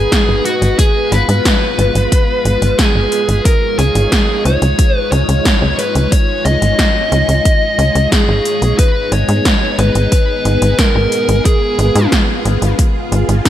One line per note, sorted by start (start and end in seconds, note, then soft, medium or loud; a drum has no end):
0.00 13.49 G#3 medium
0.00 3.41 B3 medium
0.00 0.76 D#4 medium
0.00 0.45 G#4 loud
0.00 3.41 B4 medium
0.12 kick loud
0.12 snare loud
0.12 closed hi-hat loud
0.29 0.41 G#1 medium
0.45 0.78 F#4 medium
0.45 closed hi-hat medium
0.62 0.74 G#1 medium
0.62 closed hi-hat medium
0.79 3.43 F4 medium
0.79 1.13 G#4 loud
0.79 kick loud
0.79 closed hi-hat loud
1.12 1.24 G#1 loud
1.12 2.84 B4 loud
1.12 closed hi-hat medium
1.29 1.41 G#2 medium
1.29 closed hi-hat medium
1.45 kick loud
1.45 snare loud
1.45 closed hi-hat loud
1.79 1.91 G#1 medium
1.79 closed hi-hat medium
1.95 2.08 G#1 medium
1.95 closed hi-hat medium
2.12 kick loud
2.12 closed hi-hat medium
2.45 2.58 G#1 medium
2.45 closed hi-hat medium
2.62 2.74 G#1 medium
2.62 closed hi-hat medium
2.79 3.41 G#4 medium
2.79 kick loud
2.79 snare loud
2.79 closed hi-hat medium
2.95 3.08 G#1 medium
3.12 closed hi-hat medium
3.29 3.41 G#1 medium
3.29 closed hi-hat medium
3.45 8.75 D#4 medium
3.45 8.75 F4 medium
3.45 3.78 A#4 loud
3.45 8.75 C#5 medium
3.45 kick loud
3.45 closed hi-hat medium
3.79 3.91 C#2 medium
3.79 4.41 G#4 loud
3.79 closed hi-hat medium
3.95 4.08 G#1 medium
3.95 closed hi-hat medium
4.12 kick loud
4.12 snare loud
4.12 closed hi-hat medium
4.45 4.58 C#2 loud
4.45 4.97 C#5 loud
4.45 closed hi-hat medium
4.62 4.74 C#2 medium
4.62 closed hi-hat medium
4.79 kick loud
4.79 closed hi-hat medium
4.97 5.11 B4 loud
5.12 5.24 C#2 medium
5.12 5.75 C#5 loud
5.12 closed hi-hat medium
5.29 5.41 C#2 medium
5.29 closed hi-hat medium
5.45 kick loud
5.45 snare loud
5.45 closed hi-hat medium
5.62 5.74 C#2 medium
5.79 6.12 B4 loud
5.79 closed hi-hat medium
5.95 6.08 C#2 medium
5.95 closed hi-hat medium
6.12 6.45 C#5 loud
6.12 kick loud
6.12 closed hi-hat medium
6.45 6.58 C#2 medium
6.45 8.08 D#5 loud
6.45 closed hi-hat medium
6.62 6.74 G#1 medium
6.62 closed hi-hat medium
6.79 kick loud
6.79 snare loud
6.79 closed hi-hat medium
7.12 7.24 C#2 medium
7.12 closed hi-hat medium
7.29 7.41 C#2 medium
7.29 closed hi-hat medium
7.45 kick loud
7.45 closed hi-hat medium
7.79 7.91 C#2 medium
7.79 closed hi-hat medium
7.95 8.08 C#2 medium
7.95 closed hi-hat medium
8.12 8.75 G#4 loud
8.12 kick loud
8.12 snare loud
8.12 closed hi-hat medium
8.29 8.41 G#1 medium
8.45 closed hi-hat medium
8.62 8.74 B1 medium
8.62 closed hi-hat medium
8.79 13.49 B3 medium
8.79 11.43 D#4 medium
8.79 13.49 G#4 medium
8.79 9.13 B4 loud
8.79 kick loud
8.79 closed hi-hat medium
9.12 9.24 G#1 medium
9.12 9.81 C#5 loud
9.12 closed hi-hat medium
9.29 9.41 G#2 medium
9.29 closed hi-hat medium
9.45 kick loud
9.45 snare loud
9.45 closed hi-hat medium
9.79 9.91 G#1 medium
9.79 10.11 B4 loud
9.79 closed hi-hat medium
9.95 10.08 G#1 medium
9.95 closed hi-hat medium
10.12 10.78 B4 loud
10.12 kick loud
10.12 closed hi-hat medium
10.45 10.58 G#1 medium
10.45 closed hi-hat medium
10.62 10.74 G#1 medium
10.62 closed hi-hat medium
10.79 11.45 A#4 loud
10.79 kick loud
10.79 snare loud
10.79 closed hi-hat medium
10.95 11.08 G#1 medium
11.12 closed hi-hat medium
11.29 11.41 G#1 medium
11.29 closed hi-hat medium
11.45 13.49 F4 medium
11.45 12.08 G#4 medium
11.45 kick loud
11.45 closed hi-hat medium
11.79 11.91 G#1 medium
11.79 closed hi-hat medium
11.95 12.08 G#2 medium
11.95 closed hi-hat medium
12.12 kick loud
12.12 snare loud
12.12 closed hi-hat medium
12.45 12.58 G#1 loud
12.45 closed hi-hat medium
12.62 12.74 G#1 medium
12.62 closed hi-hat medium
12.79 kick loud
12.79 closed hi-hat medium
13.12 13.24 G#1 medium
13.12 closed hi-hat medium
13.29 13.41 G#1 medium
13.29 closed hi-hat medium
13.45 13.49 D#4 medium
13.45 kick loud
13.45 snare loud
13.45 closed hi-hat medium